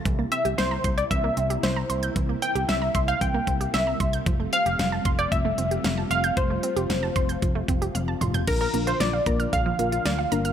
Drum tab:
CC |----------------|----------------|----------------|----------------|
HH |x-xxx-xxx-xxx-xx|x-xxx-xxx-xxx-xx|x-xxx-xxx-xxx-xx|x-xxx-xxx-xxx-xx|
SD |----o-------o---|----o-------o---|----o-------o---|----o-----------|
T1 |----------------|----------------|----------------|------------o---|
T2 |----------------|----------------|----------------|--------------o-|
FT |----------------|----------------|----------------|---------------o|
BD |o-----o-o-------|o-----o-o-o---o-|o-----o-o-------|o-----o-o-o-----|

CC |x---------------|
HH |x-xxx-xxx-xxx-xx|
SD |----o-------o---|
T1 |----------------|
T2 |----------------|
FT |----------------|
BD |o-----o-o-------|